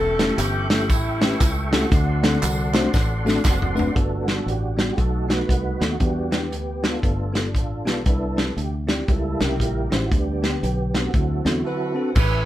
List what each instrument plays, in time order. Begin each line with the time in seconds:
Already playing: fingered electric bass E1, tine electric piano E3, saxophone section C#4 A4, tonewheel organ A4 E5 G5 C#6
0.19 tine electric piano A3 C#4 E4 G4 A4, snare, closed hi-hat, tambourine
0.38 fingered electric bass G1, saxophone section G4, clap, closed hi-hat, tambourine
0.70 tine electric piano A3 C#4 E4 G4 A4, saxophone section G4, snare, closed hi-hat, tambourine
0.89 fingered electric bass A1, saxophone section G3 C#4 E4, kick, closed hi-hat, tambourine
1.21 tine electric piano A3 C#4 E4 G4 B4, snare, closed hi-hat, tambourine
1.40 fingered electric bass C#2, kick, clap, closed hi-hat, tambourine
1.71 tine electric piano A3 C#4 E4 G4 A4, saxophone section A3 C4 F#4, snare, closed hi-hat, tambourine
1.90 fingered electric bass D2, tine electric piano D3, tonewheel organ D5 F#5 C6, kick, closed hi-hat, tambourine
2.22 tine electric piano A3 C4 D4 F#4 A4, snare, closed hi-hat, tambourine
2.43 fingered electric bass C2, clap, closed hi-hat, tambourine
2.74 tine electric piano A3 C4 D4 F#4 C5, snare, clap, closed hi-hat, tambourine
2.94 fingered electric bass A1, kick, snare, tambourine
3.25 tine electric piano A3 C4 D4 F#4 A4, snare, tambourine
3.44 fingered electric bass F#1, tonewheel organ C4 F#4 A4, kick, snare, clap, tambourine
3.62 floor tom
3.75 tine electric piano A3 C4 D4 F#4 B4, tambourine
3.79 floor tom
3.95 fingered electric bass G1, tine electric piano G2, tonewheel organ A3 B3 D4 F#4 A4, kick, closed hi-hat
4.26 tine electric piano G3 B3 D4 F#4, snare, closed hi-hat
4.46 fingered electric bass A1, closed hi-hat
4.50 tonewheel organ G4
4.77 tine electric piano G3 B3 D4 F#4, snare, closed hi-hat
4.81 tonewheel organ G4
4.96 fingered electric bass B1, tine electric piano B2, tonewheel organ A3 D#4 F#4 A4, kick, closed hi-hat
5.28 tine electric piano A3 B3 D#4 F#4, tonewheel organ D#4 F#4 B4, snare, closed hi-hat
5.49 fingered electric bass C2, kick, closed hi-hat
5.80 fingered electric bass D#2, tine electric piano A3 B3 D#4 A4, snare, closed hi-hat
5.84 tonewheel organ F#4
6.00 fingered electric bass E2, tine electric piano E3, tonewheel organ G3 B3 D4 F#4 G4, kick, closed hi-hat
6.31 tine electric piano B3 D4 E4 G4, snare, closed hi-hat
6.52 fingered electric bass D2, closed hi-hat
6.83 tine electric piano B3 D4 E4 F#4, tonewheel organ D4 F4 A4, snare, closed hi-hat
7.02 fingered electric bass G1, tine electric piano G2, tonewheel organ A3 B3 F4, kick, closed hi-hat
7.33 tine electric piano B3 F4 G4 A4, snare, closed hi-hat
7.54 fingered electric bass A1, tonewheel organ D4 F4 A4, kick, closed hi-hat
7.85 fingered electric bass B1, tine electric piano B3 F4 G4 B4, snare, closed hi-hat
8.06 fingered electric bass C2, tine electric piano C3, tonewheel organ B3 D4 E4 A4, kick, closed hi-hat
8.36 tine electric piano C4 E4 G4 B4, snare, closed hi-hat
8.57 fingered electric bass D2, closed hi-hat
8.61 tonewheel organ G4
8.87 tine electric piano C4 E4 G4 D5, snare, closed hi-hat
8.93 tonewheel organ G4
9.08 fingered electric bass C#2, tine electric piano C#3, tonewheel organ G3 A#3 E4 A4, kick, closed hi-hat
9.40 fingered electric bass C2, tine electric piano C#4 E4 G4 A#4, tonewheel organ G4, snare, closed hi-hat
9.45 tonewheel organ E4 A#4
9.60 fingered electric bass A#1, kick, closed hi-hat
9.90 fingered electric bass A1, tine electric piano C#4 E4 G4 C5, snare, closed hi-hat
9.96 tonewheel organ F#4
10.11 fingered electric bass D2, tine electric piano D3, tonewheel organ G3 B3 D4, kick, closed hi-hat
10.16 tonewheel organ G4
10.42 tine electric piano B3 D4 G4 B4, snare, closed hi-hat
10.63 fingered electric bass B1, closed hi-hat
10.94 tine electric piano B3 D4 G4 B4, tonewheel organ C4 F#4 A4, snare, closed hi-hat
11.14 fingered electric bass D2, tine electric piano D3, tonewheel organ F#3 C4 E4, kick, closed hi-hat
11.45 fingered electric bass E2, tine electric piano C4 D4 F#4 A4, snare, closed hi-hat
11.65 tonewheel organ C4 F#4 A4, saxophone section F#4 B4
11.94 tine electric piano C4 D4 F#4 A4
12.14 fingered electric bass A1, tine electric piano A2, tonewheel organ A3 E5 G#5 C#6, saxophone section E4 G#4 B4, kick, crash, tambourine